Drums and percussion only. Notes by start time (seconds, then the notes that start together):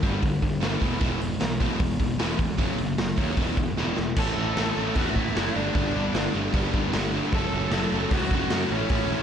0.03 kick, open hi-hat
0.23 kick, open hi-hat
0.42 kick, open hi-hat
0.62 snare, open hi-hat
0.82 kick, open hi-hat
1.01 kick, open hi-hat
1.21 open hi-hat
1.41 snare, open hi-hat
1.60 kick, open hi-hat
1.80 kick, open hi-hat
2.00 kick, open hi-hat
2.20 snare, open hi-hat
2.39 kick, open hi-hat
2.59 kick, open hi-hat
2.78 open hi-hat
2.98 snare, open hi-hat
3.18 kick, open hi-hat
3.37 kick, open hi-hat
3.57 kick, open hi-hat
3.77 snare
3.97 snare
4.16 kick, crash
4.57 snare, open hi-hat
4.95 kick, open hi-hat
5.16 kick
5.36 snare, open hi-hat
5.75 kick, open hi-hat
6.15 snare, open hi-hat
6.54 kick, open hi-hat
6.74 kick
6.93 snare, open hi-hat
7.33 kick, open hi-hat
7.71 snare, open hi-hat
8.11 kick, open hi-hat
8.31 kick
8.50 snare, open hi-hat
8.89 kick, open hi-hat